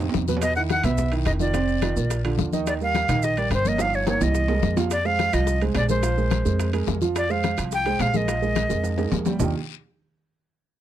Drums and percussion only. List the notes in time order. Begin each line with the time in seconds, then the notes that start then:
0.00 high bongo, high conga, high timbale, maracas
0.09 low timbale
0.14 high bongo, low bongo, high conga, short guiro, maracas
0.28 high bongo, high conga, short guiro, maracas
0.37 low timbale
0.42 high bongo, high conga, high timbale, long guiro, maracas
0.56 high bongo, maracas
0.69 high bongo, high conga, high timbale, short guiro, maracas
0.83 high bongo, high conga, low conga, high timbale, short guiro, maracas
0.98 high bongo, high conga, low conga, long guiro, maracas
1.12 high conga, high timbale, maracas
1.26 high bongo, low bongo, high conga, high timbale, short guiro, maracas
1.39 high bongo, high conga, short guiro, maracas
1.53 high bongo, high conga, high timbale, long guiro, maracas
1.68 high conga, maracas
1.82 high bongo, high conga, high timbale, short guiro, maracas
1.97 high bongo, short guiro, maracas
2.10 high bongo, high conga, high timbale, long guiro, maracas
2.25 high bongo, high conga, high timbale, maracas
2.38 high bongo, low bongo, high conga, short guiro, maracas
2.53 high bongo, high conga, short guiro, maracas
2.67 high bongo, high conga, high timbale, long guiro, maracas
2.81 high bongo, high conga, maracas
2.95 high bongo, high conga, high timbale, short guiro, maracas
3.08 high bongo, high conga, low conga, high timbale, short guiro, maracas
3.23 high bongo, high conga, long guiro, maracas
3.37 high conga, high timbale, maracas
3.51 high bongo, low bongo, high conga, high timbale, short guiro, maracas
3.65 high bongo, high conga, short guiro, maracas
3.78 high bongo, high timbale, long guiro, maracas
3.93 high conga, maracas
4.07 high bongo, high conga, high timbale, short guiro, maracas
4.21 high bongo, high conga, low timbale, short guiro, maracas
4.35 high bongo, high conga, long guiro, maracas
4.48 high bongo, high conga, low timbale, maracas
4.63 high bongo, low bongo, high conga, short guiro, maracas
4.77 high bongo, high conga, low timbale, short guiro, maracas
4.91 high bongo, high conga, high timbale, long guiro, maracas
5.05 high bongo, high conga, maracas
5.19 high bongo, high conga, high timbale, short guiro, maracas
5.33 high bongo, high conga, high timbale, short guiro, maracas
5.47 high bongo, high conga, long guiro, maracas
5.61 high conga, high timbale, maracas
5.75 high bongo, low bongo, high conga, high timbale, low timbale, short guiro, maracas
5.89 high bongo, high conga, short guiro, maracas
6.03 high bongo, high conga, high timbale, long guiro, maracas
6.18 high conga, maracas
6.31 high bongo, high conga, high timbale, short guiro, maracas
6.45 high bongo, short guiro, maracas
6.59 high bongo, high conga, high timbale, long guiro, maracas
6.73 high bongo, high conga, high timbale, maracas
6.87 high bongo, low bongo, high conga, low timbale, short guiro, maracas
7.01 high bongo, high conga, short guiro, maracas
7.15 high bongo, high conga, high timbale, long guiro, maracas
7.30 high bongo, high conga, maracas
7.43 high bongo, high conga, high timbale, short guiro, maracas
7.57 high bongo, high conga, high timbale, short guiro, maracas
7.71 high bongo, high conga, long guiro, maracas
7.86 high conga, high timbale, maracas
7.99 high bongo, low bongo, high conga, high timbale, low timbale, short guiro, maracas
8.14 high bongo, high conga, short guiro, maracas
8.28 high bongo, high conga, high timbale, long guiro, maracas
8.42 high conga, maracas
8.56 high bongo, high conga, high timbale, short guiro, maracas
8.69 high bongo, high conga, short guiro, maracas
8.84 high conga, high timbale, long guiro, maracas
8.98 low bongo, high conga, high timbale, maracas
9.12 high conga, low timbale, short guiro, maracas
9.25 low bongo, high conga, low timbale, short guiro, maracas
9.40 low bongo, low conga, low timbale, long guiro, maracas